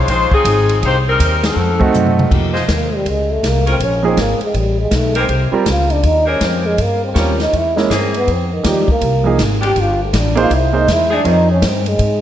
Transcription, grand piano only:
1.79 2.28 A3 medium
1.79 2.28 C4 medium
1.79 2.28 D#4 medium
1.79 2.29 F#4 medium
2.31 2.52 F3 soft
2.31 2.53 A#3 soft
2.31 2.53 D#4 soft
2.31 2.53 G4 soft
4.03 4.15 F3 medium
4.03 4.16 A#3 medium
4.03 4.16 D#4 medium
4.03 4.16 G#4 medium
5.52 5.64 G3 medium
5.52 5.65 C4 medium
5.52 5.65 F4 medium
5.52 5.65 A#4 medium
7.15 7.36 G3 medium
7.15 7.37 C4 soft
7.15 7.37 F4 medium
7.15 7.37 A#4 medium
7.76 7.88 G#3 medium
7.76 7.89 A#3 medium
7.76 7.89 E4 medium
7.76 7.89 A#4 medium
8.63 8.85 F3 medium
8.63 8.85 A#3 medium
8.63 8.86 D#4 medium
8.63 8.86 G4 medium
9.24 9.37 F3 medium
9.24 9.37 A#3 medium
9.24 9.38 D#4 medium
9.24 9.38 G#4 medium
10.35 10.48 A#3 medium
10.35 10.49 D#4 medium
10.35 10.49 G#4 medium
10.35 10.49 C5 loud
10.73 10.86 A#3 medium
10.73 10.86 D#4 medium
10.73 10.86 G#4 medium
10.73 10.86 C5 medium
11.24 11.46 C4 medium
11.24 11.46 F4 soft
11.24 11.46 A#4 medium
11.24 11.46 C#5 medium

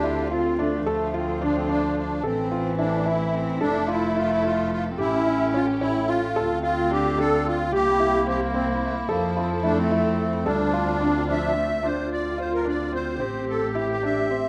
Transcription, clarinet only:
0.00 0.27 G4 medium
0.31 0.76 F4 medium
0.78 0.87 E3 medium
0.86 2.22 F3 medium
2.23 3.57 E3 medium
3.60 4.93 A3 loud
4.91 5.00 C4 medium
4.99 6.08 C#4 loud
6.35 7.68 C4 loud
7.71 9.10 A#3 loud
9.09 9.63 F3 medium
9.64 10.48 A3 loud
10.46 11.02 G3 medium
11.28 11.57 F3 medium
11.55 11.82 A3 loud
11.83 13.16 F4 medium
13.20 14.49 G4 medium

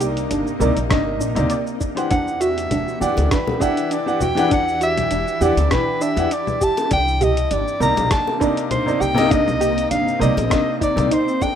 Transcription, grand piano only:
0.00 0.57 C3 medium
0.00 0.57 A#3 medium
0.00 0.58 D#4 medium
0.00 0.58 D5 loud
0.60 0.72 C3 medium
0.60 0.72 A#3 medium
0.60 0.73 D#4 medium
0.60 0.73 D5 medium
0.89 1.33 C3 medium
0.89 1.33 A#3 medium
0.89 1.33 D#4 medium
0.89 1.33 D#5 medium
1.35 1.52 C3 medium
1.35 1.52 A#3 medium
1.35 1.53 D#4 medium
1.35 1.53 D5 medium
1.95 2.97 E3 medium
1.95 2.97 D4 medium
1.95 2.98 G4 medium
1.95 2.98 F#5 medium
3.00 3.57 E3 medium
3.00 3.58 D4 medium
3.00 3.58 G4 medium
3.00 3.58 F#5 medium
3.60 4.03 E3 medium
3.60 4.03 D4 medium
3.60 4.03 G4 medium
3.60 4.04 F#5 loud
4.06 4.23 E3 medium
4.06 4.23 D4 medium
4.06 4.23 G4 medium
4.06 4.23 F#5 medium
4.35 5.37 E3 loud
4.35 5.37 D4 medium
4.35 5.38 G4 medium
4.35 5.38 F#5 loud
5.41 5.52 E3 medium
5.41 5.53 D4 medium
5.41 5.53 G4 medium
5.41 5.53 F#5 medium
5.70 6.13 E3 medium
5.70 6.14 D4 medium
5.70 6.14 G4 medium
5.70 6.14 G5 medium
6.17 6.27 E3 medium
6.17 6.27 D4 medium
6.17 6.27 G4 medium
6.17 6.28 F#5 medium
7.80 8.37 C3 medium
7.80 8.38 A#3 medium
7.80 8.38 D#4 medium
7.80 8.38 D5 medium
8.40 8.83 C3 medium
8.40 8.83 A#3 medium
8.40 8.83 D#4 medium
8.40 8.84 D5 loud
8.86 9.03 C3 medium
8.86 9.03 A#3 medium
8.86 9.03 D#4 medium
8.86 9.03 D5 medium
9.14 10.16 C3 loud
9.14 10.17 A#3 medium
9.14 10.18 D#4 medium
9.14 10.18 D#5 loud
10.19 10.32 C3 medium
10.19 10.32 A#3 medium
10.19 10.33 D#4 medium
10.19 10.33 D5 medium
10.50 10.93 C3 medium
10.50 10.93 A#3 medium
10.50 10.93 D#4 medium
10.50 10.94 D#5 medium
10.96 11.06 C3 medium
10.96 11.07 A#3 medium
10.96 11.07 D#4 medium
10.96 11.07 D5 medium

